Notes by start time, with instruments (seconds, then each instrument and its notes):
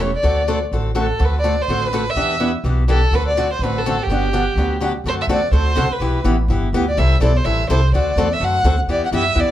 Already playing: upright bass E1
0.01 violin C#5
0.15 violin D5
0.23 upright bass D2, steel-string acoustic guitar D3 A3 C4 F#4 A4
0.48 steel-string acoustic guitar D3 A3 C4 F#4 A4
0.72 upright bass A1, steel-string acoustic guitar D3 A3 C4 F#4 A4
0.95 steel-string acoustic guitar D3 A3 C4 F#4 A4
1.00 violin A4
1.19 upright bass D2, steel-string acoustic guitar D3 A3 C4 F#4 A4
1.25 violin B4
1.39 violin D5
1.44 steel-string acoustic guitar D3 A3 C4 F#4 A4
1.62 violin C5
1.68 upright bass A1, steel-string acoustic guitar D3 A3 C4 F#4 A4
1.87 violin B4
1.93 steel-string acoustic guitar D3 A3 C4 F#4 A4
2.10 violin E5
2.16 upright bass E2, steel-string acoustic guitar E3 B3 D4 G4
2.40 steel-string acoustic guitar E3 B3 D4 G4
2.64 upright bass B1, steel-string acoustic guitar E3 B3 D4 G4
2.88 steel-string acoustic guitar E3 B3 D4 G4, violin A4
3.11 upright bass D2, steel-string acoustic guitar D3 A3 C4 F#4 A4
3.15 violin B4
3.28 violin D5
3.37 steel-string acoustic guitar D3 A3 C4 F#4 A4
3.53 violin C5
3.59 upright bass A1, steel-string acoustic guitar D3 A3
3.63 steel-string acoustic guitar C4 F#4 A4, violin B4
3.78 violin A4
3.86 steel-string acoustic guitar D3 A3 C4 F#4 A4
4.03 violin G4
4.07 upright bass G1, steel-string acoustic guitar D3 F#3 B3
4.11 steel-string acoustic guitar D4 G4
4.33 steel-string acoustic guitar D3 F#3 B3 D4 G4
4.56 upright bass D2, steel-string acoustic guitar D3 F#3 B3 D4 G4
4.80 steel-string acoustic guitar D3 F#3 B3 D4 G4
5.04 upright bass F#2, steel-string acoustic guitar D3 A3 C4 F#4 A4
5.08 violin C5
5.21 violin E5
5.27 upright bass E2, steel-string acoustic guitar D3 A3 C4 F#4 A4, violin D5
5.51 upright bass D2, steel-string acoustic guitar D3 A3 C4 F#4 A4, violin C5
5.75 upright bass C2, steel-string acoustic guitar D3 A3 C4 F#4 A4
5.90 violin B4, muted upright bass stroke
6.00 upright bass B1, steel-string acoustic guitar E3 B3 E4 G4
6.24 upright bass A1, steel-string acoustic guitar E3 B3 E4 G4
6.48 upright bass G1, steel-string acoustic guitar E3 B3 E4 G4
6.73 upright bass D2, steel-string acoustic guitar E3 B3 E4 G4
6.88 violin D5
6.97 upright bass C2, steel-string acoustic guitar C3 E3 G3 C4 E4 A4, violin E5
7.20 upright bass B1, steel-string acoustic guitar C3 E3 G3 C4 E4 A4, violin D5
7.36 violin C5
7.44 upright bass A1, steel-string acoustic guitar C3 E3 G3 C4 E4 A4, violin E5
7.69 upright bass C2, steel-string acoustic guitar C3 E3 G3 C4 E4 A4, violin C5
7.92 upright bass D2, steel-string acoustic guitar D3 A3 C4 F#4 A4, violin D5
8.16 upright bass E2, steel-string acoustic guitar D3 A3 C4 F#4 A4
8.33 violin E5
8.40 upright bass F#2, steel-string acoustic guitar D3 A3 C4 F#4 A4, violin F#5
8.64 upright bass D2, steel-string acoustic guitar D3 A3 C4 F#4 A4
8.87 upright bass E2, steel-string acoustic guitar E3 B3 E4 G4
8.91 violin D5
9.05 violin F#5
9.11 upright bass F#2, steel-string acoustic guitar E3 B3 E4 G4, violin E5
9.35 upright bass E2, steel-string acoustic guitar E3 B3 E4 G4
9.40 violin D5